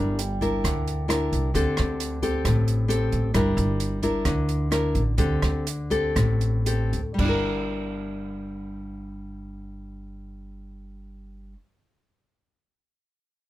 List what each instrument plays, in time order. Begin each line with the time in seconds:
Already playing: upright bass G1, nylon-string guitar G3 D4 E4 A#4
0.19 vibraphone G5, closed hi-hat
0.41 nylon-string guitar D4 E4 A#4, kick, closed hi-hat
0.64 upright bass D2, nylon-string guitar D3, kick, cross-stick, closed hi-hat
0.88 closed hi-hat
1.08 nylon-string guitar D4 E4 A#4, cross-stick, closed hi-hat
1.32 upright bass C2, kick, closed hi-hat
1.54 upright bass D2, nylon-string guitar D3 C4 G4 A4, kick, closed hi-hat
1.77 upright bass D2, cross-stick, closed hi-hat
2.00 closed hi-hat
2.22 nylon-string guitar C4 G4 A4, kick, closed hi-hat
2.45 upright bass A1, nylon-string guitar A2, kick, cross-stick, closed hi-hat
2.68 closed hi-hat
2.88 nylon-string guitar C4 G4 A4, closed hi-hat
3.12 upright bass A1, kick, closed hi-hat
3.34 upright bass G1, nylon-string guitar G3 D4 E4 A#4, kick, cross-stick, closed hi-hat
3.57 upright bass G1, closed hi-hat
3.80 closed hi-hat
4.02 nylon-string guitar D4 E4 A#4, kick, closed hi-hat
4.25 upright bass D2, nylon-string guitar D3, kick, cross-stick, closed hi-hat
4.49 closed hi-hat
4.71 nylon-string guitar D4 E4 A#4, cross-stick, closed hi-hat
4.95 upright bass A1, kick, closed hi-hat
5.17 upright bass D2, nylon-string guitar D3 C4 G4 A4, kick, closed hi-hat
5.42 upright bass D2, cross-stick, closed hi-hat
5.67 closed hi-hat
5.90 nylon-string guitar C4 G4 A4, kick, closed hi-hat
6.15 upright bass A1, nylon-string guitar A2, kick, cross-stick, closed hi-hat
6.41 closed hi-hat
6.66 nylon-string guitar C4 G4 A4, closed hi-hat
6.92 upright bass D2, kick, closed hi-hat
7.14 nylon-string guitar G3
7.19 upright bass G1, nylon-string guitar D4, kick, crash
7.24 nylon-string guitar E4
7.29 nylon-string guitar A#4